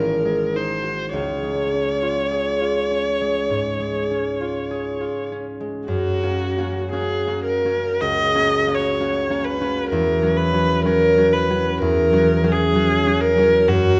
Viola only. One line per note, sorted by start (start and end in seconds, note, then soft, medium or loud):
0.00 0.58 A#4 medium
0.56 1.14 C5 medium
1.16 5.28 C#5 medium
5.87 6.88 F#4 medium
6.92 7.44 G#4 medium
7.45 8.03 A#4 medium
8.01 8.76 D#5 medium
8.75 9.46 C#5 medium
9.45 9.89 B4 medium
9.90 10.39 A#4 medium
10.38 10.84 B4 medium
10.85 11.35 A#4 medium
11.33 11.80 B4 medium
11.81 12.53 A#4 medium
12.52 13.23 G#4 medium
13.21 13.70 A#4 medium
13.68 14.00 F#4 medium